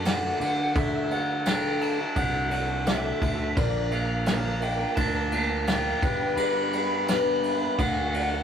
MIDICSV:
0, 0, Header, 1, 6, 480
1, 0, Start_track
1, 0, Tempo, 702576
1, 516, Time_signature, 4, 2, 24, 8
1, 5759, End_track
2, 0, Start_track
2, 0, Title_t, "Lead electric guitar"
2, 0, Program_c, 0, 29
2, 44, Note_on_c, 0, 78, 93
2, 493, Note_off_c, 0, 78, 0
2, 525, Note_on_c, 0, 76, 96
2, 744, Note_off_c, 0, 76, 0
2, 765, Note_on_c, 0, 78, 93
2, 984, Note_off_c, 0, 78, 0
2, 1007, Note_on_c, 0, 79, 89
2, 1240, Note_off_c, 0, 79, 0
2, 1243, Note_on_c, 0, 81, 105
2, 1478, Note_off_c, 0, 81, 0
2, 1481, Note_on_c, 0, 78, 96
2, 1702, Note_off_c, 0, 78, 0
2, 1721, Note_on_c, 0, 78, 96
2, 1958, Note_on_c, 0, 76, 94
2, 1966, Note_off_c, 0, 78, 0
2, 2411, Note_off_c, 0, 76, 0
2, 2438, Note_on_c, 0, 74, 104
2, 2679, Note_off_c, 0, 74, 0
2, 2682, Note_on_c, 0, 77, 92
2, 2925, Note_off_c, 0, 77, 0
2, 2933, Note_on_c, 0, 77, 103
2, 3162, Note_on_c, 0, 79, 103
2, 3173, Note_off_c, 0, 77, 0
2, 3386, Note_off_c, 0, 79, 0
2, 3389, Note_on_c, 0, 81, 113
2, 3883, Note_off_c, 0, 81, 0
2, 3886, Note_on_c, 0, 79, 111
2, 4351, Note_on_c, 0, 83, 107
2, 4376, Note_off_c, 0, 79, 0
2, 4827, Note_off_c, 0, 83, 0
2, 4835, Note_on_c, 0, 83, 112
2, 5317, Note_on_c, 0, 78, 96
2, 5331, Note_off_c, 0, 83, 0
2, 5759, Note_off_c, 0, 78, 0
2, 5759, End_track
3, 0, Start_track
3, 0, Title_t, "Steel-string acoustic guitar"
3, 0, Program_c, 1, 25
3, 28, Note_on_c, 1, 50, 90
3, 33, Note_on_c, 1, 57, 87
3, 36, Note_on_c, 1, 62, 86
3, 37, Note_on_c, 1, 66, 88
3, 40, Note_on_c, 1, 69, 90
3, 264, Note_off_c, 1, 57, 0
3, 269, Note_off_c, 1, 62, 0
3, 272, Note_off_c, 1, 50, 0
3, 272, Note_on_c, 1, 57, 62
3, 273, Note_off_c, 1, 66, 0
3, 277, Note_on_c, 1, 62, 65
3, 278, Note_off_c, 1, 69, 0
3, 281, Note_on_c, 1, 66, 68
3, 287, Note_on_c, 1, 69, 65
3, 383, Note_off_c, 1, 69, 0
3, 391, Note_off_c, 1, 66, 0
3, 391, Note_on_c, 1, 69, 58
3, 395, Note_off_c, 1, 57, 0
3, 397, Note_off_c, 1, 62, 0
3, 399, Note_on_c, 1, 66, 47
3, 406, Note_on_c, 1, 62, 44
3, 507, Note_off_c, 1, 62, 0
3, 508, Note_off_c, 1, 66, 0
3, 509, Note_on_c, 1, 50, 88
3, 512, Note_off_c, 1, 69, 0
3, 512, Note_on_c, 1, 57, 90
3, 515, Note_on_c, 1, 62, 82
3, 517, Note_on_c, 1, 66, 88
3, 520, Note_on_c, 1, 69, 91
3, 741, Note_off_c, 1, 57, 0
3, 746, Note_off_c, 1, 62, 0
3, 749, Note_on_c, 1, 57, 67
3, 750, Note_off_c, 1, 66, 0
3, 753, Note_off_c, 1, 50, 0
3, 754, Note_on_c, 1, 62, 58
3, 756, Note_off_c, 1, 69, 0
3, 758, Note_on_c, 1, 66, 59
3, 989, Note_off_c, 1, 57, 0
3, 990, Note_off_c, 1, 62, 0
3, 994, Note_on_c, 1, 50, 86
3, 997, Note_on_c, 1, 57, 98
3, 998, Note_off_c, 1, 66, 0
3, 998, Note_on_c, 1, 62, 93
3, 1003, Note_on_c, 1, 69, 95
3, 1342, Note_off_c, 1, 69, 0
3, 1350, Note_on_c, 1, 69, 49
3, 1356, Note_off_c, 1, 50, 0
3, 1357, Note_off_c, 1, 57, 0
3, 1358, Note_off_c, 1, 62, 0
3, 1360, Note_on_c, 1, 66, 52
3, 1366, Note_on_c, 1, 62, 43
3, 1579, Note_off_c, 1, 69, 0
3, 1587, Note_off_c, 1, 66, 0
3, 1587, Note_on_c, 1, 69, 61
3, 1592, Note_off_c, 1, 62, 0
3, 1595, Note_on_c, 1, 66, 50
3, 1600, Note_on_c, 1, 62, 54
3, 1702, Note_off_c, 1, 62, 0
3, 1704, Note_on_c, 1, 57, 63
3, 1708, Note_off_c, 1, 66, 0
3, 1711, Note_on_c, 1, 62, 59
3, 1712, Note_off_c, 1, 69, 0
3, 1716, Note_on_c, 1, 66, 70
3, 1721, Note_on_c, 1, 69, 80
3, 1821, Note_off_c, 1, 69, 0
3, 1827, Note_off_c, 1, 66, 0
3, 1829, Note_on_c, 1, 69, 54
3, 1831, Note_off_c, 1, 57, 0
3, 1834, Note_off_c, 1, 62, 0
3, 1835, Note_on_c, 1, 66, 50
3, 1842, Note_on_c, 1, 62, 43
3, 1946, Note_off_c, 1, 62, 0
3, 1950, Note_off_c, 1, 66, 0
3, 1950, Note_on_c, 1, 50, 85
3, 1951, Note_off_c, 1, 69, 0
3, 1954, Note_on_c, 1, 57, 85
3, 1954, Note_on_c, 1, 62, 96
3, 1959, Note_on_c, 1, 66, 94
3, 1959, Note_on_c, 1, 69, 89
3, 2180, Note_off_c, 1, 57, 0
3, 2187, Note_off_c, 1, 62, 0
3, 2188, Note_on_c, 1, 57, 64
3, 2191, Note_off_c, 1, 66, 0
3, 2194, Note_off_c, 1, 50, 0
3, 2195, Note_off_c, 1, 69, 0
3, 2195, Note_on_c, 1, 62, 62
3, 2200, Note_on_c, 1, 66, 65
3, 2203, Note_on_c, 1, 69, 74
3, 2306, Note_off_c, 1, 69, 0
3, 2313, Note_off_c, 1, 57, 0
3, 2314, Note_on_c, 1, 69, 55
3, 2315, Note_off_c, 1, 66, 0
3, 2316, Note_off_c, 1, 62, 0
3, 2323, Note_on_c, 1, 66, 58
3, 2328, Note_on_c, 1, 62, 49
3, 2436, Note_off_c, 1, 62, 0
3, 2436, Note_off_c, 1, 69, 0
3, 2438, Note_on_c, 1, 46, 85
3, 2440, Note_on_c, 1, 50, 85
3, 2440, Note_on_c, 1, 53, 86
3, 2441, Note_off_c, 1, 66, 0
3, 2442, Note_on_c, 1, 58, 89
3, 2444, Note_on_c, 1, 62, 81
3, 2449, Note_on_c, 1, 70, 97
3, 2665, Note_off_c, 1, 53, 0
3, 2674, Note_off_c, 1, 58, 0
3, 2674, Note_on_c, 1, 53, 66
3, 2677, Note_off_c, 1, 62, 0
3, 2678, Note_off_c, 1, 46, 0
3, 2679, Note_off_c, 1, 50, 0
3, 2682, Note_on_c, 1, 58, 63
3, 2683, Note_off_c, 1, 70, 0
3, 2685, Note_on_c, 1, 62, 73
3, 2692, Note_on_c, 1, 70, 71
3, 2908, Note_off_c, 1, 53, 0
3, 2910, Note_off_c, 1, 62, 0
3, 2911, Note_off_c, 1, 58, 0
3, 2911, Note_on_c, 1, 46, 85
3, 2915, Note_on_c, 1, 50, 96
3, 2916, Note_off_c, 1, 70, 0
3, 2916, Note_on_c, 1, 53, 92
3, 2919, Note_on_c, 1, 58, 93
3, 2919, Note_on_c, 1, 62, 99
3, 2924, Note_on_c, 1, 70, 95
3, 3268, Note_off_c, 1, 70, 0
3, 3273, Note_off_c, 1, 62, 0
3, 3275, Note_off_c, 1, 46, 0
3, 3276, Note_on_c, 1, 70, 63
3, 3277, Note_off_c, 1, 50, 0
3, 3277, Note_off_c, 1, 53, 0
3, 3278, Note_off_c, 1, 58, 0
3, 3281, Note_on_c, 1, 62, 52
3, 3287, Note_on_c, 1, 58, 46
3, 3290, Note_on_c, 1, 53, 45
3, 3502, Note_off_c, 1, 70, 0
3, 3506, Note_off_c, 1, 62, 0
3, 3510, Note_on_c, 1, 70, 56
3, 3513, Note_off_c, 1, 58, 0
3, 3515, Note_off_c, 1, 53, 0
3, 3515, Note_on_c, 1, 62, 60
3, 3522, Note_on_c, 1, 58, 51
3, 3523, Note_on_c, 1, 53, 47
3, 3628, Note_off_c, 1, 53, 0
3, 3630, Note_off_c, 1, 58, 0
3, 3634, Note_off_c, 1, 70, 0
3, 3636, Note_off_c, 1, 62, 0
3, 3636, Note_on_c, 1, 53, 66
3, 3638, Note_on_c, 1, 58, 66
3, 3645, Note_on_c, 1, 62, 71
3, 3649, Note_on_c, 1, 70, 73
3, 3746, Note_off_c, 1, 70, 0
3, 3754, Note_off_c, 1, 62, 0
3, 3754, Note_on_c, 1, 70, 60
3, 3757, Note_off_c, 1, 53, 0
3, 3758, Note_off_c, 1, 58, 0
3, 3762, Note_on_c, 1, 62, 47
3, 3765, Note_on_c, 1, 58, 47
3, 3771, Note_on_c, 1, 53, 47
3, 3873, Note_off_c, 1, 53, 0
3, 3875, Note_off_c, 1, 58, 0
3, 3876, Note_off_c, 1, 70, 0
3, 3877, Note_off_c, 1, 62, 0
3, 3878, Note_on_c, 1, 46, 84
3, 3880, Note_on_c, 1, 50, 78
3, 3881, Note_on_c, 1, 53, 99
3, 3883, Note_on_c, 1, 58, 87
3, 3885, Note_on_c, 1, 62, 86
3, 3890, Note_on_c, 1, 70, 96
3, 4111, Note_off_c, 1, 53, 0
3, 4114, Note_on_c, 1, 55, 66
3, 4117, Note_off_c, 1, 62, 0
3, 4118, Note_off_c, 1, 46, 0
3, 4118, Note_off_c, 1, 58, 0
3, 4119, Note_off_c, 1, 50, 0
3, 4121, Note_on_c, 1, 59, 62
3, 4124, Note_off_c, 1, 70, 0
3, 4125, Note_on_c, 1, 62, 71
3, 4128, Note_on_c, 1, 71, 64
3, 4231, Note_off_c, 1, 71, 0
3, 4236, Note_off_c, 1, 55, 0
3, 4237, Note_off_c, 1, 62, 0
3, 4239, Note_off_c, 1, 59, 0
3, 4239, Note_on_c, 1, 71, 56
3, 4245, Note_on_c, 1, 62, 53
3, 4250, Note_on_c, 1, 59, 55
3, 4256, Note_on_c, 1, 55, 52
3, 4355, Note_off_c, 1, 55, 0
3, 4358, Note_off_c, 1, 71, 0
3, 4359, Note_off_c, 1, 59, 0
3, 4359, Note_on_c, 1, 43, 81
3, 4361, Note_off_c, 1, 62, 0
3, 4363, Note_on_c, 1, 50, 92
3, 4363, Note_on_c, 1, 55, 82
3, 4367, Note_on_c, 1, 59, 86
3, 4370, Note_on_c, 1, 71, 93
3, 4371, Note_on_c, 1, 62, 86
3, 4597, Note_off_c, 1, 55, 0
3, 4598, Note_off_c, 1, 43, 0
3, 4601, Note_off_c, 1, 50, 0
3, 4601, Note_off_c, 1, 59, 0
3, 4604, Note_off_c, 1, 62, 0
3, 4604, Note_off_c, 1, 71, 0
3, 4605, Note_on_c, 1, 55, 56
3, 4609, Note_on_c, 1, 59, 67
3, 4614, Note_on_c, 1, 62, 65
3, 4617, Note_on_c, 1, 71, 65
3, 4832, Note_off_c, 1, 55, 0
3, 4836, Note_off_c, 1, 59, 0
3, 4836, Note_off_c, 1, 71, 0
3, 4837, Note_on_c, 1, 43, 83
3, 4837, Note_on_c, 1, 50, 82
3, 4838, Note_off_c, 1, 62, 0
3, 4840, Note_on_c, 1, 55, 92
3, 4844, Note_on_c, 1, 59, 88
3, 4845, Note_on_c, 1, 71, 93
3, 4846, Note_on_c, 1, 62, 105
3, 5189, Note_off_c, 1, 71, 0
3, 5192, Note_off_c, 1, 62, 0
3, 5197, Note_off_c, 1, 59, 0
3, 5197, Note_on_c, 1, 71, 55
3, 5198, Note_off_c, 1, 43, 0
3, 5198, Note_off_c, 1, 50, 0
3, 5199, Note_off_c, 1, 55, 0
3, 5201, Note_on_c, 1, 62, 55
3, 5205, Note_on_c, 1, 59, 53
3, 5212, Note_on_c, 1, 55, 46
3, 5316, Note_off_c, 1, 62, 0
3, 5318, Note_off_c, 1, 71, 0
3, 5321, Note_off_c, 1, 59, 0
3, 5321, Note_on_c, 1, 50, 80
3, 5322, Note_off_c, 1, 55, 0
3, 5324, Note_on_c, 1, 62, 87
3, 5325, Note_on_c, 1, 57, 88
3, 5326, Note_on_c, 1, 66, 91
3, 5329, Note_on_c, 1, 69, 92
3, 5427, Note_off_c, 1, 69, 0
3, 5436, Note_on_c, 1, 69, 58
3, 5437, Note_off_c, 1, 66, 0
3, 5440, Note_off_c, 1, 50, 0
3, 5441, Note_off_c, 1, 62, 0
3, 5442, Note_off_c, 1, 57, 0
3, 5445, Note_on_c, 1, 66, 56
3, 5451, Note_on_c, 1, 62, 52
3, 5557, Note_off_c, 1, 69, 0
3, 5559, Note_off_c, 1, 62, 0
3, 5562, Note_off_c, 1, 66, 0
3, 5562, Note_on_c, 1, 57, 65
3, 5567, Note_on_c, 1, 62, 66
3, 5571, Note_on_c, 1, 66, 65
3, 5576, Note_on_c, 1, 69, 69
3, 5668, Note_off_c, 1, 69, 0
3, 5675, Note_off_c, 1, 66, 0
3, 5676, Note_on_c, 1, 69, 54
3, 5681, Note_off_c, 1, 57, 0
3, 5683, Note_off_c, 1, 62, 0
3, 5683, Note_on_c, 1, 66, 52
3, 5691, Note_on_c, 1, 62, 43
3, 5759, Note_off_c, 1, 62, 0
3, 5759, Note_off_c, 1, 66, 0
3, 5759, Note_off_c, 1, 69, 0
3, 5759, End_track
4, 0, Start_track
4, 0, Title_t, "Tonewheel organ"
4, 0, Program_c, 2, 16
4, 0, Note_on_c, 2, 54, 65
4, 0, Note_on_c, 2, 57, 61
4, 0, Note_on_c, 2, 62, 61
4, 0, Note_on_c, 2, 69, 66
4, 499, Note_off_c, 2, 62, 0
4, 509, Note_on_c, 2, 64, 60
4, 2410, Note_off_c, 2, 57, 0
4, 2410, Note_off_c, 2, 69, 0
4, 2413, Note_off_c, 2, 54, 0
4, 2415, Note_off_c, 2, 64, 0
4, 2430, Note_on_c, 2, 58, 64
4, 2431, Note_on_c, 2, 70, 78
4, 2432, Note_on_c, 2, 53, 68
4, 2433, Note_on_c, 2, 62, 67
4, 4097, Note_off_c, 2, 58, 0
4, 4097, Note_off_c, 2, 70, 0
4, 4098, Note_off_c, 2, 53, 0
4, 4116, Note_on_c, 2, 59, 63
4, 4118, Note_on_c, 2, 71, 84
4, 4123, Note_on_c, 2, 55, 73
4, 5306, Note_off_c, 2, 59, 0
4, 5306, Note_off_c, 2, 71, 0
4, 5309, Note_off_c, 2, 55, 0
4, 5320, Note_on_c, 2, 57, 62
4, 5323, Note_on_c, 2, 69, 77
4, 5325, Note_on_c, 2, 54, 71
4, 5759, Note_off_c, 2, 54, 0
4, 5759, Note_off_c, 2, 57, 0
4, 5759, Note_off_c, 2, 62, 0
4, 5759, Note_off_c, 2, 69, 0
4, 5759, End_track
5, 0, Start_track
5, 0, Title_t, "Picked electric bass"
5, 0, Program_c, 3, 34
5, 0, Note_on_c, 3, 42, 101
5, 204, Note_off_c, 3, 42, 0
5, 274, Note_on_c, 3, 50, 89
5, 491, Note_off_c, 3, 50, 0
5, 514, Note_on_c, 3, 50, 106
5, 1378, Note_off_c, 3, 50, 0
5, 1476, Note_on_c, 3, 36, 105
5, 2124, Note_off_c, 3, 36, 0
5, 2197, Note_on_c, 3, 38, 90
5, 2413, Note_off_c, 3, 38, 0
5, 2437, Note_on_c, 3, 34, 108
5, 3300, Note_off_c, 3, 34, 0
5, 3396, Note_on_c, 3, 38, 98
5, 4043, Note_off_c, 3, 38, 0
5, 4116, Note_on_c, 3, 31, 86
5, 4332, Note_off_c, 3, 31, 0
5, 4353, Note_on_c, 3, 43, 100
5, 5218, Note_off_c, 3, 43, 0
5, 5319, Note_on_c, 3, 38, 101
5, 5759, Note_off_c, 3, 38, 0
5, 5759, End_track
6, 0, Start_track
6, 0, Title_t, "Drums"
6, 37, Note_on_c, 9, 54, 95
6, 39, Note_on_c, 9, 51, 111
6, 45, Note_on_c, 9, 38, 116
6, 106, Note_off_c, 9, 54, 0
6, 107, Note_off_c, 9, 51, 0
6, 113, Note_off_c, 9, 38, 0
6, 280, Note_on_c, 9, 51, 84
6, 349, Note_off_c, 9, 51, 0
6, 517, Note_on_c, 9, 36, 109
6, 517, Note_on_c, 9, 51, 99
6, 585, Note_off_c, 9, 36, 0
6, 585, Note_off_c, 9, 51, 0
6, 757, Note_on_c, 9, 51, 79
6, 825, Note_off_c, 9, 51, 0
6, 996, Note_on_c, 9, 54, 93
6, 997, Note_on_c, 9, 51, 117
6, 1003, Note_on_c, 9, 38, 117
6, 1064, Note_off_c, 9, 54, 0
6, 1065, Note_off_c, 9, 51, 0
6, 1072, Note_off_c, 9, 38, 0
6, 1238, Note_on_c, 9, 51, 79
6, 1307, Note_off_c, 9, 51, 0
6, 1475, Note_on_c, 9, 51, 103
6, 1477, Note_on_c, 9, 36, 84
6, 1543, Note_off_c, 9, 51, 0
6, 1545, Note_off_c, 9, 36, 0
6, 1715, Note_on_c, 9, 51, 75
6, 1783, Note_off_c, 9, 51, 0
6, 1956, Note_on_c, 9, 51, 97
6, 1960, Note_on_c, 9, 54, 92
6, 1962, Note_on_c, 9, 38, 112
6, 2024, Note_off_c, 9, 51, 0
6, 2029, Note_off_c, 9, 54, 0
6, 2031, Note_off_c, 9, 38, 0
6, 2198, Note_on_c, 9, 36, 81
6, 2198, Note_on_c, 9, 51, 78
6, 2266, Note_off_c, 9, 36, 0
6, 2267, Note_off_c, 9, 51, 0
6, 2438, Note_on_c, 9, 36, 108
6, 2438, Note_on_c, 9, 51, 104
6, 2506, Note_off_c, 9, 36, 0
6, 2506, Note_off_c, 9, 51, 0
6, 2674, Note_on_c, 9, 51, 79
6, 2742, Note_off_c, 9, 51, 0
6, 2910, Note_on_c, 9, 51, 99
6, 2917, Note_on_c, 9, 38, 121
6, 2923, Note_on_c, 9, 54, 99
6, 2979, Note_off_c, 9, 51, 0
6, 2985, Note_off_c, 9, 38, 0
6, 2992, Note_off_c, 9, 54, 0
6, 3154, Note_on_c, 9, 51, 78
6, 3223, Note_off_c, 9, 51, 0
6, 3392, Note_on_c, 9, 51, 105
6, 3396, Note_on_c, 9, 36, 93
6, 3460, Note_off_c, 9, 51, 0
6, 3464, Note_off_c, 9, 36, 0
6, 3633, Note_on_c, 9, 51, 78
6, 3701, Note_off_c, 9, 51, 0
6, 3875, Note_on_c, 9, 51, 112
6, 3881, Note_on_c, 9, 38, 121
6, 3882, Note_on_c, 9, 54, 96
6, 3943, Note_off_c, 9, 51, 0
6, 3949, Note_off_c, 9, 38, 0
6, 3950, Note_off_c, 9, 54, 0
6, 4115, Note_on_c, 9, 51, 79
6, 4116, Note_on_c, 9, 36, 98
6, 4183, Note_off_c, 9, 51, 0
6, 4185, Note_off_c, 9, 36, 0
6, 4353, Note_on_c, 9, 51, 107
6, 4421, Note_off_c, 9, 51, 0
6, 4598, Note_on_c, 9, 51, 83
6, 4667, Note_off_c, 9, 51, 0
6, 4838, Note_on_c, 9, 51, 115
6, 4840, Note_on_c, 9, 54, 91
6, 4844, Note_on_c, 9, 38, 124
6, 4907, Note_off_c, 9, 51, 0
6, 4908, Note_off_c, 9, 54, 0
6, 4913, Note_off_c, 9, 38, 0
6, 5078, Note_on_c, 9, 51, 89
6, 5147, Note_off_c, 9, 51, 0
6, 5320, Note_on_c, 9, 36, 95
6, 5322, Note_on_c, 9, 51, 108
6, 5388, Note_off_c, 9, 36, 0
6, 5390, Note_off_c, 9, 51, 0
6, 5562, Note_on_c, 9, 51, 86
6, 5631, Note_off_c, 9, 51, 0
6, 5759, End_track
0, 0, End_of_file